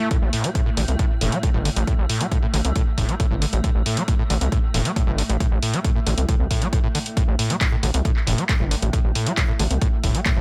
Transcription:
Already playing: A2 A3
0.11 A2, kick, closed hi-hat
0.22 A1
0.33 A2, open hi-hat
0.44 G3, closed hi-hat
0.55 A2, kick, closed hi-hat
0.66 A2
0.77 A1 D3, open hi-hat
0.88 C2, closed hi-hat
0.99 A2, kick, closed hi-hat
1.21 E1 A2, open hi-hat
1.32 G3, closed hi-hat
1.43 A2, kick, closed hi-hat
1.54 G1 A2
1.65 D3, open hi-hat
1.76 A1, closed hi-hat
1.87 A2, kick, closed hi-hat
1.98 A1
2.09 A2, open hi-hat
2.20 G3, closed hi-hat
2.31 A2, kick, closed hi-hat
2.43 A2
2.54 A1 D3, open hi-hat
2.65 C2, closed hi-hat
2.76 A2, kick, closed hi-hat
2.98 E1 A2, kick, open hi-hat
3.09 G3, closed hi-hat
3.20 A2, kick, closed hi-hat
3.31 G1 A2
3.42 D3, open hi-hat
3.53 A1, closed hi-hat
3.64 A2, kick, closed hi-hat
3.75 A1
3.86 A2, open hi-hat
3.97 G3, closed hi-hat
4.08 A2, kick, closed hi-hat
4.19 A2
4.30 A1 D3, open hi-hat
4.41 C2, closed hi-hat
4.52 A2, kick, closed hi-hat
4.74 E1 A2, open hi-hat
4.85 G3, closed hi-hat
4.96 A2, kick, closed hi-hat
5.07 G1 A2
5.18 D3, open hi-hat
5.29 A1, closed hi-hat
5.40 A2, kick, closed hi-hat
5.52 A1
5.62 A2, open hi-hat
5.74 G3, closed hi-hat
5.84 A2, kick, closed hi-hat
5.96 A2
6.07 A1 D3, open hi-hat
6.18 C2, closed hi-hat
6.29 A2, kick, closed hi-hat
6.40 C2
6.51 A2, kick, open hi-hat
6.62 G3, closed hi-hat
6.73 A2, kick, closed hi-hat
6.84 A2
6.95 D3, open hi-hat
7.06 closed hi-hat
7.17 A2 A3, kick, closed hi-hat
7.28 A1
7.39 A2, open hi-hat
7.50 G3, closed hi-hat
7.61 A2, kick, clap, closed hi-hat
7.72 A2
7.83 A1 D3, open hi-hat
7.94 C2, closed hi-hat
8.05 A2, kick, closed hi-hat
8.16 clap
8.27 E1 A2, open hi-hat
8.38 G3, closed hi-hat
8.49 A2, kick, clap, closed hi-hat
8.60 G1 A2
8.71 D3, open hi-hat
8.82 A1, closed hi-hat
8.93 A2, kick, closed hi-hat
9.04 A1
9.15 A2, open hi-hat
9.26 G3, closed hi-hat
9.37 A2, kick, clap, closed hi-hat
9.48 A2
9.59 A1 D3, open hi-hat
9.71 C2, closed hi-hat
9.81 A2, kick, closed hi-hat
10.04 E1 A2, kick, open hi-hat
10.14 G3, closed hi-hat
10.25 A2, kick, clap, closed hi-hat
10.37 G1 A2

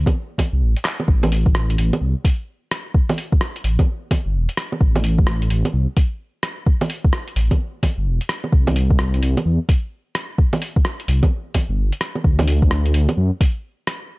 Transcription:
0.06 kick, closed hi-hat, low bongo
0.38 kick, open hi-hat, low bongo
0.53 C2
0.61 A1
0.76 closed hi-hat
0.85 cross-stick, clap, open hi-hat
1.00 low bongo
1.08 A1, kick
1.23 open hi-hat, low bongo
1.32 open hi-hat
1.46 kick
1.55 cross-stick
1.70 closed hi-hat
1.78 A1, open hi-hat
1.93 closed hi-hat, low bongo
2.01 C2
2.25 kick, open hi-hat
2.71 cross-stick, open hi-hat
2.94 kick
3.09 open hi-hat, low bongo
3.18 open hi-hat
3.32 kick
3.41 cross-stick
3.56 closed hi-hat
3.64 A1, open hi-hat
3.79 kick, closed hi-hat, low bongo
4.11 kick, open hi-hat, low bongo
4.26 G1
4.34 E1
4.49 closed hi-hat
4.57 cross-stick, open hi-hat
4.72 low bongo
4.81 A1, kick
4.96 open hi-hat, low bongo
5.04 open hi-hat
5.18 kick
5.27 cross-stick
5.42 closed hi-hat
5.50 A1, open hi-hat
5.65 closed hi-hat, low bongo
5.73 C2
5.97 kick, open hi-hat
6.43 cross-stick, open hi-hat
6.66 kick
6.81 open hi-hat, low bongo
6.90 open hi-hat
7.04 kick
7.13 cross-stick
7.28 closed hi-hat
7.36 A1, open hi-hat
7.51 kick, closed hi-hat, low bongo
7.83 kick, open hi-hat, low bongo
7.98 G1
8.06 E1
8.21 closed hi-hat
8.29 cross-stick, open hi-hat
8.44 low bongo
8.52 C2, kick
8.67 open hi-hat, low bongo
8.76 open hi-hat
8.90 kick
8.99 cross-stick
9.14 closed hi-hat
9.22 C2, open hi-hat
9.37 closed hi-hat, low bongo
9.46 E2
9.69 kick, open hi-hat
10.15 cross-stick, open hi-hat
10.38 kick
10.53 open hi-hat, low bongo
10.62 open hi-hat
10.76 kick
10.85 cross-stick
11.00 closed hi-hat
11.08 C2, open hi-hat
11.23 kick, closed hi-hat, low bongo
11.54 kick, open hi-hat, low bongo
11.69 G1
11.78 G1
11.92 closed hi-hat
12.01 cross-stick, open hi-hat
12.15 low bongo
12.24 D2, kick
12.39 open hi-hat, low bongo
12.48 open hi-hat
12.62 kick
12.71 cross-stick
12.86 closed hi-hat
12.94 D2, open hi-hat
13.09 closed hi-hat, low bongo
13.17 F#2
13.41 kick, open hi-hat
13.87 cross-stick, open hi-hat

